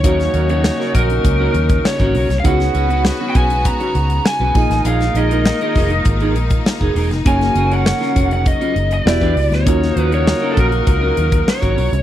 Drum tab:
CC |----------------|--------------x-|----------------|----------------|
HH |xxxx--xxx-xx-xox|xxxx--xxxxxx---x|xxxx-xoxxxxx--ox|xxxx--xxxxxx-xox|
SD |-o--oo------o--o|-o--o-------o--o|-o--o-------o--o|-o--oo------o--o|
BD |o-----o-o--o-o--|o-----o-o-----o-|------o-o--o-o--|o-----o-o----o--|

CC |----------------|
HH |x-xx--xxx-xx-xox|
SD |-o--o-------o---|
BD |o-----o-o--o-o--|